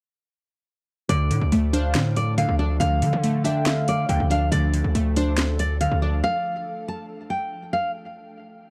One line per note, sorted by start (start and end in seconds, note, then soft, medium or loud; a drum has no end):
1.09 1.32 D2 loud
1.09 1.29 D3 medium
1.09 7.91 F3 medium
1.09 7.91 A3 medium
1.09 7.91 D4 medium
1.09 4.49 A4 loud
1.09 1.70 D5 loud
1.09 closed hi-hat medium
1.30 1.41 A2 loud
1.30 1.93 D3 medium
1.30 closed hi-hat medium
1.41 1.52 D2 loud
1.52 1.97 D2 loud
1.52 2.59 A3 medium
1.52 closed hi-hat medium
1.73 2.58 D4 loud
1.73 2.14 C5 medium
1.73 1.94 F5 loud
1.73 closed hi-hat loud
1.95 2.46 A2 loud
1.95 2.37 D3 medium
1.95 snare loud
1.95 closed hi-hat medium
2.16 2.33 D5 medium
2.16 closed hi-hat medium
2.38 2.80 D3 medium
2.38 2.55 F5 medium
2.38 closed hi-hat medium
2.49 2.79 D2 loud
2.59 3.43 D4 medium
2.59 2.76 D5 medium
2.80 3.04 D2 loud
2.80 3.01 D3 medium
2.80 3.41 F5 loud
2.80 closed hi-hat loud
3.02 3.12 D3 loud
3.02 3.65 D3 medium
3.02 closed hi-hat medium
3.13 4.05 D3 loud
3.24 4.31 A3 medium
3.24 closed hi-hat medium
3.44 4.29 D4 loud
3.44 3.85 E5 medium
3.44 3.65 G5 medium
3.44 closed hi-hat medium
3.66 4.08 D3 medium
3.66 4.48 F5 loud
3.66 snare loud
3.66 closed hi-hat medium
3.88 4.05 D5 medium
3.88 closed hi-hat medium
4.09 4.20 D2 loud
4.09 4.51 D3 loud
4.09 4.26 G5 medium
4.09 closed hi-hat medium
4.20 4.51 D2 loud
4.30 4.52 D4 medium
4.30 4.48 F5 medium
4.30 closed hi-hat medium
4.52 4.83 D2 loud
4.52 4.73 D3 medium
4.52 7.92 A4 loud
4.52 5.12 D5 loud
4.52 closed hi-hat medium
4.74 5.37 D3 medium
4.74 closed hi-hat medium
4.84 4.95 D2 loud
4.95 5.88 D2 loud
4.95 6.02 A3 medium
4.95 closed hi-hat medium
5.16 6.01 D4 loud
5.16 5.57 C5 medium
5.16 closed hi-hat medium
5.38 5.80 D3 medium
5.38 snare loud
5.38 closed hi-hat medium
5.59 5.76 D5 medium
5.59 closed hi-hat medium
5.81 6.88 D3 medium
5.81 5.98 F5 medium
5.81 closed hi-hat medium
5.92 6.22 D2 loud
6.02 7.09 D4 medium
6.02 6.19 D5 medium
6.24 6.84 F5 loud
6.88 7.05 A5 medium
7.30 7.71 G5 medium
7.73 7.90 F5 medium